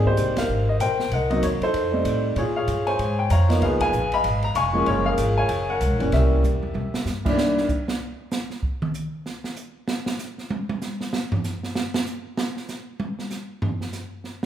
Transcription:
Already playing: upright bass G#1, grand piano G3 A#3 C4
0.05 grand piano D#4 G4 C5, kick
0.17 upright bass C2, kick, hi-hat pedal, ride
0.27 upright bass G#1
0.37 upright bass G1, grand piano A#4 C5 F5, snare, ride
0.48 upright bass G#1
0.69 grand piano D#5
0.80 upright bass A#1, grand piano A#4 C5 G5, kick, hi-hat pedal, ride
0.99 snare
1.11 upright bass C2, grand piano A#4 D#5 F#5, kick, ride
1.30 grand piano F#3 A#3 C4 D#4 D#5, ride
1.42 upright bass D#2, grand piano C#5, kick, hi-hat pedal, ride
1.61 grand piano D#4 A4 C5, muted upright bass stroke, ride
1.73 upright bass F2, kick, ride
1.92 grand piano G3 A3 C4 D#4
2.05 upright bass A2, kick, hi-hat pedal, ride
2.36 upright bass A#2, grand piano F4 G#4 C#5, kick, ride
2.57 grand piano G#4 C#5 F5
2.67 upright bass G2, kick, hi-hat pedal, ride
2.87 grand piano C5 C#5 G#5, ride
2.99 upright bass G#2, kick, ride
3.19 grand piano G5
3.30 upright bass F2, grand piano C#5 F5 A#5, kick, hi-hat pedal, ride
3.49 grand piano F3 A#3 B3 D#4, snare, ride
3.61 upright bass C#2, grand piano G#4 B4 F5, kick, ride
3.80 grand piano B4 F5 G#5, kick, ride
3.92 upright bass A#1, hi-hat pedal
4.12 grand piano D#5 F5 B5, ride
4.24 upright bass G#1, kick, ride
4.42 grand piano A#5, ride
4.55 upright bass F1, grand piano F5 G#5 C#6, kick, hi-hat pedal, ride
4.73 grand piano F3 G#3 A#3 C#4
4.86 upright bass F#1, grand piano F4 A#4 C#5, kick, ride
5.06 grand piano G#4 A#4 F5
5.18 upright bass G#1, kick, hi-hat pedal, ride
5.38 grand piano C#5 F5 G#5
5.49 upright bass F#1, kick, ride
5.70 grand piano A#4 C#5 F#5
5.81 upright bass C#2, kick, hi-hat pedal, ride
5.90 upright bass A#1
5.99 upright bass F#1, grand piano E3 G3 A#3 C#4, ride
6.12 upright bass C2, grand piano G4 A#4 E5, kick, snare, ride
6.31 kick
6.43 upright bass E2, hi-hat pedal, high tom
6.63 high tom
6.74 upright bass C2, high tom
6.93 muted upright bass stroke, snare
7.05 upright bass G2, snare, hi-hat pedal
7.25 grand piano C2 D#3 G3 A#3 D4, kick, crash
7.38 snare
7.57 snare
7.69 kick, hi-hat pedal
7.88 snare
8.31 snare, hi-hat pedal
8.50 snare
8.63 kick
8.82 mid tom
8.94 hi-hat pedal
9.26 snare
9.44 snare
9.56 hi-hat pedal
9.88 snare
10.06 snare
10.19 snare, hi-hat pedal
10.38 snare
10.50 high tom
10.69 high tom
10.81 snare, hi-hat pedal
11.01 snare
11.13 snare
11.32 floor tom
11.44 snare, hi-hat pedal
11.63 snare
11.75 snare
11.94 snare
12.06 hi-hat pedal
12.37 snare
12.57 snare
12.69 snare, hi-hat pedal
13.00 high tom
13.19 snare
13.30 snare, hi-hat pedal
13.62 floor tom
13.81 snare
13.93 snare, hi-hat pedal
14.24 snare

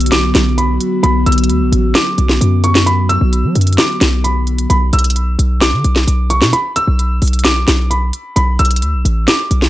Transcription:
Already playing: 808-style bass B1, analog synth pad D3 F#3 B3 F#4
0.00 closed hi-hat
0.06 closed hi-hat
0.12 grand piano D6, snare, closed hi-hat
0.35 808-style bass B1, snare, closed hi-hat
0.58 grand piano B5, closed hi-hat
0.81 closed hi-hat
1.03 808-style bass B1, grand piano B5, closed hi-hat
1.26 808-style bass B1, grand piano E6, closed hi-hat
1.32 closed hi-hat
1.38 closed hi-hat
1.44 closed hi-hat
1.49 808-style bass D2, closed hi-hat
1.61 808-style bass B1
1.72 808-style bass A1, closed hi-hat
1.95 grand piano D6, snare, closed hi-hat
2.18 808-style bass B1, closed hi-hat
2.29 snare
2.41 808-style bass F#2, closed hi-hat
2.64 grand piano C#6, closed hi-hat
2.75 snare
2.86 grand piano B5, closed hi-hat
3.09 grand piano E6, closed hi-hat
3.21 808-style bass B1
3.33 closed hi-hat
3.44 808-style bass F#3
3.55 808-style bass F#2, closed hi-hat
3.61 closed hi-hat
3.67 closed hi-hat
3.73 closed hi-hat
3.78 grand piano D6, snare, closed hi-hat
4.01 808-style bass B1, snare, closed hi-hat
4.24 grand piano B5, closed hi-hat
4.47 closed hi-hat
4.58 closed hi-hat
4.70 808-style bass B1, grand piano B5, closed hi-hat
4.93 808-style bass B1, grand piano E6, closed hi-hat
4.99 closed hi-hat
5.04 closed hi-hat
5.10 closed hi-hat
5.16 closed hi-hat
5.39 808-style bass B1, closed hi-hat
5.61 grand piano D6, snare, closed hi-hat
5.73 808-style bass D3
5.84 808-style bass B1, closed hi-hat
5.96 snare
6.07 808-style bass B1, closed hi-hat
6.30 grand piano C#6, closed hi-hat
6.42 808-style bass B2, snare
6.53 grand piano B5, closed hi-hat
6.76 grand piano E6, closed hi-hat
6.87 808-style bass B1
6.99 closed hi-hat
7.22 808-style bass B1, closed hi-hat, open hi-hat
7.28 closed hi-hat
7.33 closed hi-hat
7.39 closed hi-hat
7.44 grand piano D6, snare, closed hi-hat
7.68 808-style bass B1, snare, closed hi-hat
7.91 grand piano B5, closed hi-hat
8.13 closed hi-hat
8.36 808-style bass B1, grand piano B5, closed hi-hat
8.59 808-style bass B1, grand piano E6, closed hi-hat
8.65 closed hi-hat
8.71 closed hi-hat
8.76 closed hi-hat
8.82 808-style bass D2, closed hi-hat
8.94 808-style bass B1
9.05 808-style bass A1, closed hi-hat
9.28 grand piano D6, snare, closed hi-hat
9.51 808-style bass B1, closed hi-hat
9.62 snare

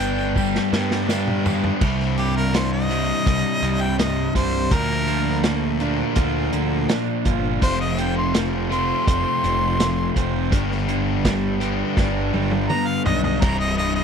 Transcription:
Already playing: picked electric bass G1, overdriven electric guitar G2 G3 B3, harmonica G5
0.00 overdriven electric guitar D4, closed hi-hat, tambourine
0.36 overdriven electric guitar G3 G4, kick, tambourine
0.55 snare
0.72 picked electric bass G2, overdriven electric guitar B3, snare, tambourine
0.91 snare
1.08 overdriven electric guitar D4 G4, snare, tambourine
1.27 mid tom
1.44 overdriven electric guitar B3, floor tom, tambourine
1.64 floor tom
1.80 overdriven electric guitar C2 G2 C3 G3 E4, picked electric bass C2, kick, crash
2.00 snare
2.18 overdriven electric guitar G2, harmonica G4, closed hi-hat
2.36 harmonica A#4
2.54 overdriven electric guitar G2, harmonica C5, snare, closed hi-hat
2.73 harmonica D#5
2.89 overdriven electric guitar C2 G2 C3 G3 E4, closed hi-hat
3.26 picked electric bass C2, overdriven electric guitar G3, kick, closed hi-hat
3.62 picked electric bass C2, overdriven electric guitar G2, closed hi-hat
3.81 harmonica G5
3.98 overdriven electric guitar C3, harmonica D#5, snare, closed hi-hat
4.35 picked electric bass C2, overdriven electric guitar G3, harmonica C5, kick, closed hi-hat
4.71 picked electric bass D2, overdriven electric guitar A#2 F3 A#3 D4 F4 A#4, harmonica A#4, kick, closed hi-hat
4.90 snare
5.07 overdriven electric guitar F3, closed hi-hat
5.44 overdriven electric guitar A#3, snare, closed hi-hat
5.80 overdriven electric guitar A#2 F3 A#3 D4 F4 A#4, closed hi-hat
6.16 picked electric bass D2, overdriven electric guitar F4, kick, closed hi-hat
6.53 picked electric bass D2, overdriven electric guitar A#3, closed hi-hat
6.89 overdriven electric guitar D4, snare, closed hi-hat
7.25 picked electric bass G1, overdriven electric guitar F4, kick, closed hi-hat
7.61 picked electric bass F1, overdriven electric guitar F2 C3 F3 A3 C4 F4, harmonica C5, kick, closed hi-hat
7.81 harmonica D#5
7.97 overdriven electric guitar C3, harmonica G5, closed hi-hat
8.17 harmonica C6
8.34 overdriven electric guitar F3, snare, closed hi-hat
8.70 overdriven electric guitar F2 C3 F3 A3 C4 F4, harmonica C6, closed hi-hat
9.07 picked electric bass F1, overdriven electric guitar C4, harmonica C6, kick, closed hi-hat
9.43 picked electric bass F1, overdriven electric guitar F3, closed hi-hat
9.80 overdriven electric guitar A3, snare, closed hi-hat
10.16 picked electric bass F1, overdriven electric guitar C4, kick, closed hi-hat
10.51 picked electric bass G1, overdriven electric guitar G2 D3 G3 B3 D4 G4, kick, closed hi-hat
10.71 snare
10.88 overdriven electric guitar D3, closed hi-hat
11.25 overdriven electric guitar G3, kick, snare, closed hi-hat
11.60 overdriven electric guitar G2 D3 G3 B3 D4 G4, closed hi-hat
11.97 picked electric bass G1, overdriven electric guitar D4, kick, snare
12.34 picked electric bass G1, overdriven electric guitar G3, high tom
12.51 high tom
12.69 overdriven electric guitar B3, harmonica A#5, mid tom
12.87 harmonica F5
13.05 picked electric bass B1, overdriven electric guitar D4, harmonica D#5, floor tom
13.24 harmonica D#5, floor tom
13.41 picked electric bass C1, overdriven electric guitar C2 G2 C3 G3 E4, harmonica A#5, kick, closed hi-hat, crash
13.59 harmonica D#5
13.77 overdriven electric guitar G2, harmonica D#5, closed hi-hat
13.95 harmonica D#5

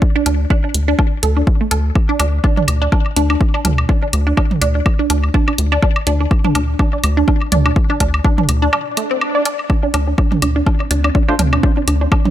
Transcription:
0.02 kick
0.16 synth arpeggio sound D4
0.26 analog synth bass D2, synth arpeggio sound D4, closed hi-hat, low woodblock
0.50 synth arpeggio sound D4, kick
0.64 synth arpeggio sound D4
0.74 analog synth bass D2, closed hi-hat
0.88 synth arpeggio sound D4
0.99 synth arpeggio sound D4, kick, low woodblock
1.23 analog synth bass D2, synth arpeggio sound A4, closed hi-hat
1.37 synth arpeggio sound D4
1.47 kick
1.61 synth arpeggio sound A3
1.71 analog synth bass D2, synth arpeggio sound A4, closed hi-hat, low woodblock
1.95 kick, high woodblock
2.09 synth arpeggio sound D4
2.19 analog synth bass D2, synth arpeggio sound D4, closed hi-hat, high woodblock, low woodblock
2.44 synth arpeggio sound D4, kick, high woodblock
2.57 synth arpeggio sound D4, mid tom
2.68 analog synth bass D2, closed hi-hat, high woodblock
2.82 synth arpeggio sound D4
2.92 synth arpeggio sound D4, kick, low woodblock
3.06 high woodblock
3.16 analog synth bass D2, synth arpeggio sound D4, closed hi-hat
3.30 synth arpeggio sound D4, high woodblock
3.41 kick
3.54 synth arpeggio sound D4, high woodblock
3.65 analog synth bass D2, synth arpeggio sound D4, closed hi-hat, mid tom, low woodblock
3.78 high woodblock
3.89 synth arpeggio sound D4, kick
4.02 synth arpeggio sound D4
4.13 analog synth bass D2, closed hi-hat, high woodblock
4.27 synth arpeggio sound D4
4.37 synth arpeggio sound D4, kick, high woodblock, low woodblock
4.51 mid tom
4.61 analog synth bass D2, synth arpeggio sound D4, closed hi-hat, high woodblock
4.75 synth arpeggio sound D4
4.86 kick, high woodblock
4.99 synth arpeggio sound D4
5.10 analog synth bass D2, synth arpeggio sound D4, closed hi-hat, low woodblock
5.24 high woodblock
5.34 synth arpeggio sound D4, kick
5.48 synth arpeggio sound D4, high woodblock
5.58 analog synth bass D2, closed hi-hat
5.72 synth arpeggio sound D4, high woodblock
5.82 synth arpeggio sound D4, kick, low woodblock
5.96 high woodblock
6.07 analog synth bass D2, synth arpeggio sound D4, closed hi-hat
6.21 synth arpeggio sound D4
6.31 kick, high woodblock
6.44 synth arpeggio sound D4, mid tom
6.55 analog synth bass D2, synth arpeggio sound D4, closed hi-hat, high woodblock, low woodblock
6.79 synth arpeggio sound D4, kick, high woodblock
6.93 synth arpeggio sound D4
7.04 analog synth bass D2, closed hi-hat, high woodblock
7.17 synth arpeggio sound D4
7.28 synth arpeggio sound D4, kick, low woodblock
7.41 high woodblock
7.52 analog synth bass D2, synth arpeggio sound D4, closed hi-hat, mid tom
7.66 synth arpeggio sound D4, high woodblock
7.76 kick
7.90 synth arpeggio sound D4, high woodblock
8.00 analog synth bass D2, synth arpeggio sound D4, kick, closed hi-hat, low woodblock
8.14 high woodblock
8.25 synth arpeggio sound D4, kick
8.38 synth arpeggio sound D4, mid tom
8.49 analog synth bass D2, closed hi-hat, high woodblock
8.62 synth arpeggio sound D4
8.73 synth arpeggio sound D4, swell, high woodblock, low woodblock
8.97 synth arpeggio sound A3, closed hi-hat, high woodblock
9.11 synth arpeggio sound C4
9.21 high woodblock
9.35 synth arpeggio sound D5
9.45 synth arpeggio sound D5, closed hi-hat, low woodblock
9.59 high woodblock
9.70 synth drone C4, synth arpeggio sound D4, kick, high woodblock
9.83 synth arpeggio sound D4
9.94 analog synth bass D2, synth arpeggio sound D4, closed hi-hat, high woodblock, low woodblock
10.07 synth arpeggio sound D4
10.18 synth arpeggio sound D4, kick, high woodblock
10.32 synth arpeggio sound D4, mid tom
10.42 analog synth bass D2, synth arpeggio sound D4, closed hi-hat, high woodblock
10.56 synth arpeggio sound D4
10.66 synth arpeggio sound D4, kick, low woodblock
10.80 synth arpeggio sound D4, high woodblock
10.91 analog synth bass D2, synth arpeggio sound D4, closed hi-hat
11.04 synth arpeggio sound D4, high woodblock
11.15 synth arpeggio sound D4, kick
11.29 synth stab A3 D4 F4 C5, synth arpeggio sound D4, high woodblock
11.39 analog synth bass D2, synth arpeggio sound D4, closed hi-hat, mid tom, low woodblock
11.53 synth arpeggio sound D4, high woodblock
11.63 synth arpeggio sound D4, kick
11.77 synth arpeggio sound D4
11.87 analog synth bass D2, synth arpeggio sound D4, closed hi-hat, high woodblock
12.01 synth arpeggio sound D4
12.12 synth arpeggio sound D4, kick, high woodblock, low woodblock
12.25 synth arpeggio sound D4, mid tom

